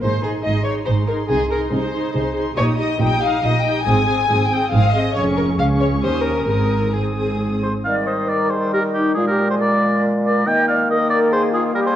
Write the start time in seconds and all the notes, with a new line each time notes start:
0.03 G#1 G#2 D#4 G#4 C5 C6
0.23 D#4 G#4 C6
0.45 G#1 G#2 D#4 G#4 D#5 C6
0.65 D#4 G#4 C#5 C6
0.86 G#1 G#2 D#4 G#4 C5 C6
1.07 D#4 G#4 A#4 C6
1.29 C2 C3 D#4 G#4 C6
1.50 D#4 G#4 A#4 C6
1.71 C2 C3 D#4 G#4 C5 C6
1.94 D#4 G#4 C6
2.14 C2 C3 D#4 G#4 C6
2.35 D#4 G#4 C6
2.56 A#1 A#2 D#4 G4 C#5 D#6
2.79 D#4 G4 D#5 D#6
3.00 A#1 A#2 D#4 G4 G5 D#6
3.21 D#4 G4 F5 D#6
3.43 A#1 A#2 D#4 G4 D#5 D#6
3.65 D#4 G4 G5 D#6
3.86 G#1 G#2 C4 G#4 G#5 D#6
4.08 C4 G#4 D#6
4.29 G#1 G#2 C4 G#4 D#6
4.51 C4 G#4 G5 D#6
4.72 G#1 G#2 C4 G#4 F5 D#6
4.94 C4 G#4 D#5 D#6
5.15 F1 F2 C#4 G#4 C#5 C#6
5.37 A#4
5.58 C#2 C#4 G#4 F5 C#6
5.81 C#5
6.03 D#2 C#4 G4 C5 D#6
6.25 A#4
6.48 G#1 G#2 C4 G#4 A#4 D#6
6.95 C4 G#4 D#6
7.61 G#4 C5
7.85 D#3 G3 D5 F5
8.07 C5 D#5
8.28 A#4 D5
8.50 G#4 C5
8.72 G4 A#4
8.94 D#4 G4
9.15 A#2 G#3 F4 G#4
9.27 G4 A#4
9.50 G#4 C5
9.61 A#4 D5
10.25 A#4 D5
10.46 D#3 A#3 D#5 G5
10.68 D5 F5
10.90 A#4 D#5
11.10 A#4 D5
11.32 G#4 C5
11.53 F4 G#4
11.74 G3 G4 A#4
11.86 G#4 C5